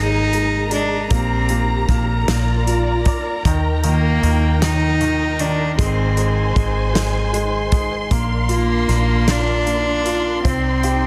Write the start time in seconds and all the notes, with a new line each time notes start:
Already playing: G#1 G#3 D#4 G#4 A#4 A#5
0.33 G#3, closed hi-hat
0.71 G#3 D4, closed hi-hat
1.10 A#1 A#3 C4 G4 A#4, kick, closed hi-hat
1.49 A#3, closed hi-hat
1.89 A#1 A#3, kick, snare, closed hi-hat
2.27 A#1 A#3 F4 D5, snare, closed hi-hat
2.67 F4, closed hi-hat
3.05 D5, kick, closed hi-hat
3.44 D#2 D#3 G5, kick, closed hi-hat
3.84 D#3 A#3, closed hi-hat
4.23 D#2 D#3, closed hi-hat
4.62 D#3 D#4, snare, closed hi-hat
5.01 D#3, closed hi-hat
5.39 D#3 D4, closed hi-hat
5.78 G#1 G#3 C4 C5 G#5 C6, kick, closed hi-hat
6.16 G#3, closed hi-hat
6.55 G#1 G#3, kick, closed hi-hat
6.93 G#3, snare, closed hi-hat
7.33 G#3, closed hi-hat
7.71 G#3, kick, closed hi-hat
8.10 A#1 A#3 D4 A#4 F5, kick, closed hi-hat
8.49 A#3 F4, closed hi-hat
8.88 A#1 A#3, snare, closed hi-hat
9.27 D4 F4, snare, closed hi-hat
9.66 A#3, closed hi-hat
10.06 F4, closed hi-hat
10.43 C2 C4 D#4 C5 G5, kick, closed hi-hat
10.83 G4, closed hi-hat